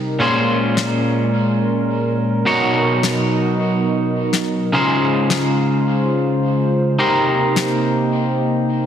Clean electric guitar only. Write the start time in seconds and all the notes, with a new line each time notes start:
Already playing: D#4 G4 A#4 C5
0.19 A#2 C#4 F4 G#4 C5
2.45 B2 D#4 F#4 A#4 C#5
4.72 C#3 D#4 F4 G#4 C5
6.99 D#4 G4 A#4 C5